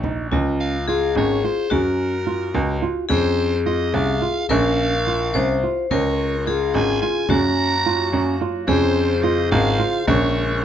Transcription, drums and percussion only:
0.04 frame drum
0.33 frame drum
1.16 frame drum
1.71 frame drum
2.54 frame drum
3.10 frame drum
3.94 frame drum
4.49 frame drum
5.34 frame drum
5.63 frame drum
5.91 frame drum
6.74 frame drum
7.29 frame drum
8.12 frame drum
8.68 frame drum
9.52 frame drum
10.07 frame drum

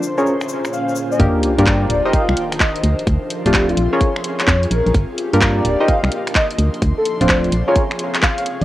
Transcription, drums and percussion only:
0.03 shaker
0.18 shaker
0.26 shaker
0.41 finger snap, shaker
0.49 shaker
0.65 finger snap, shaker
0.73 shaker
0.89 shaker
0.96 shaker
1.12 shaker
1.20 kick, closed hi-hat
1.43 closed hi-hat
1.58 closed hi-hat
1.66 kick, clap
1.90 closed hi-hat
2.13 kick, closed hi-hat
2.29 finger snap
2.37 closed hi-hat
2.52 finger snap, closed hi-hat
2.60 kick, clap
2.76 closed hi-hat
2.84 closed hi-hat
2.99 closed hi-hat
3.07 kick, closed hi-hat
3.30 closed hi-hat
3.46 closed hi-hat
3.54 kick, clap
3.69 closed hi-hat
3.77 closed hi-hat
4.01 kick, closed hi-hat
4.16 finger snap
4.24 closed hi-hat
4.40 finger snap, clap, closed hi-hat
4.48 kick, clap
4.63 closed hi-hat
4.71 closed hi-hat
4.87 closed hi-hat
4.94 kick, closed hi-hat
5.18 closed hi-hat
5.33 closed hi-hat
5.41 kick, clap
5.65 closed hi-hat
5.88 kick, closed hi-hat
6.04 finger snap
6.12 closed hi-hat
6.27 finger snap, closed hi-hat
6.35 kick, clap
6.51 closed hi-hat
6.59 closed hi-hat
6.74 closed hi-hat
6.82 kick, closed hi-hat
7.05 closed hi-hat
7.21 closed hi-hat
7.29 kick, clap
7.44 closed hi-hat
7.52 closed hi-hat
7.76 kick, closed hi-hat
7.91 finger snap
7.99 closed hi-hat
8.15 finger snap, clap, closed hi-hat
8.23 kick, clap
8.38 closed hi-hat
8.46 closed hi-hat

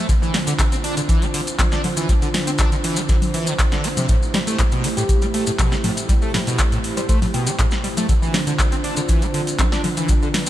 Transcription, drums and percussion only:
0.09 kick, closed hi-hat, maracas
0.23 maracas
0.34 snare, open hi-hat, low conga
0.47 closed hi-hat, maracas
0.59 kick, clap, closed hi-hat, maracas
0.72 closed hi-hat, maracas
0.84 open hi-hat
0.97 closed hi-hat, maracas
1.09 kick, closed hi-hat, maracas
1.22 closed hi-hat, maracas
1.34 open hi-hat
1.47 closed hi-hat, maracas
1.59 kick, clap, closed hi-hat, low conga, maracas
1.72 snare, maracas
1.84 open hi-hat, low conga
1.97 closed hi-hat, maracas
2.09 kick, closed hi-hat, maracas
2.22 closed hi-hat, maracas
2.34 snare, open hi-hat, low conga
2.47 closed hi-hat, maracas
2.58 kick, clap, closed hi-hat, maracas
2.72 closed hi-hat, maracas
2.84 open hi-hat
2.96 closed hi-hat, maracas
3.09 kick, snare, closed hi-hat, maracas
3.22 open hi-hat, low conga, maracas
3.34 open hi-hat
3.47 closed hi-hat, maracas
3.59 kick, clap, closed hi-hat, maracas
3.72 snare, closed hi-hat, maracas
3.84 open hi-hat
3.97 closed hi-hat, low conga, maracas
4.09 kick, closed hi-hat, maracas
4.22 maracas
4.34 snare, open hi-hat, low conga
4.47 closed hi-hat, maracas
4.59 kick, clap, closed hi-hat, maracas
4.72 closed hi-hat, maracas
4.84 open hi-hat
4.97 closed hi-hat, maracas
5.09 kick, closed hi-hat, maracas
5.22 closed hi-hat, maracas
5.34 open hi-hat
5.47 closed hi-hat, maracas
5.59 kick, clap, closed hi-hat, low conga, maracas
5.72 snare, maracas
5.84 open hi-hat, low conga
5.97 closed hi-hat, maracas
6.09 kick, closed hi-hat, maracas
6.22 maracas
6.34 snare, open hi-hat, low conga
6.47 closed hi-hat, maracas
6.58 kick, clap, closed hi-hat, maracas
6.72 closed hi-hat, maracas
6.84 open hi-hat
6.97 closed hi-hat, maracas
7.09 kick, closed hi-hat, maracas
7.22 open hi-hat, low conga, maracas
7.34 open hi-hat
7.47 closed hi-hat, maracas
7.59 kick, clap, closed hi-hat, maracas
7.71 snare, maracas
7.84 open hi-hat
7.97 closed hi-hat, low conga, maracas
8.09 kick, closed hi-hat, maracas
8.22 maracas
8.34 snare, open hi-hat, low conga
8.47 closed hi-hat, maracas
8.59 kick, clap, closed hi-hat, maracas
8.72 closed hi-hat, maracas
8.84 open hi-hat
8.97 closed hi-hat, maracas
9.08 kick, closed hi-hat, maracas
9.22 closed hi-hat, maracas
9.34 open hi-hat
9.47 closed hi-hat, maracas
9.59 kick, clap, closed hi-hat, low conga, maracas
9.72 snare, maracas
9.84 open hi-hat, low conga
9.97 closed hi-hat, maracas
10.08 kick, closed hi-hat, maracas
10.22 maracas
10.34 snare, open hi-hat, low conga

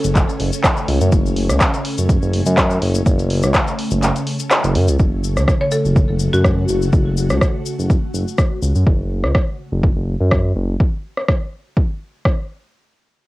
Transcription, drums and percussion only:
0.04 closed hi-hat, cabasa
0.16 kick, clap, closed hi-hat, cabasa
0.29 cabasa
0.40 open hi-hat
0.53 closed hi-hat, cabasa
0.64 kick, cross-stick, clap, closed hi-hat, cabasa
0.77 cabasa
0.88 open hi-hat
1.01 closed hi-hat, cabasa
1.12 kick, closed hi-hat, cabasa
1.26 cabasa
1.37 open hi-hat
1.50 cross-stick, closed hi-hat, cabasa
1.61 kick, cross-stick, clap, closed hi-hat, cabasa
1.74 closed hi-hat, cabasa
1.85 open hi-hat
1.98 closed hi-hat, cabasa
2.09 kick, closed hi-hat, cabasa
2.22 cabasa
2.33 open hi-hat
2.46 closed hi-hat, cabasa
2.57 kick, cross-stick, clap, closed hi-hat, cabasa
2.70 cabasa
2.82 open hi-hat
2.94 closed hi-hat, cabasa
3.06 kick, closed hi-hat, cabasa
3.19 closed hi-hat, cabasa
3.30 open hi-hat
3.43 cross-stick, closed hi-hat, cabasa
3.54 kick, cross-stick, clap, closed hi-hat, cabasa
3.67 closed hi-hat, cabasa
3.79 open hi-hat
3.91 closed hi-hat, cabasa
4.03 clap, closed hi-hat, cabasa
4.16 closed hi-hat, cabasa
4.27 open hi-hat
4.39 closed hi-hat, cabasa
4.51 cross-stick, clap, closed hi-hat, cabasa
4.64 closed hi-hat, cabasa
4.75 open hi-hat
4.88 closed hi-hat, cabasa
4.99 kick, cabasa
5.24 cabasa
5.37 cross-stick, cabasa
5.48 kick, cross-stick, cabasa
5.72 cabasa
5.85 cabasa
5.96 kick, cabasa
6.20 cabasa
6.34 cabasa
6.45 kick, cross-stick, cabasa
6.68 cabasa
6.82 cabasa
6.93 kick, cabasa
7.17 cabasa
7.30 cross-stick, cabasa
7.41 kick, cross-stick, cabasa
7.66 cabasa
7.79 cabasa
7.90 kick, cabasa
8.14 cabasa
8.28 cabasa
8.38 kick, cross-stick, cabasa
8.62 cabasa
8.75 cabasa
8.87 kick
9.24 cross-stick
9.35 kick, cross-stick
9.83 kick
10.31 kick, cross-stick
10.80 kick
11.17 cross-stick
11.28 kick, cross-stick
11.77 kick
12.25 kick, cross-stick

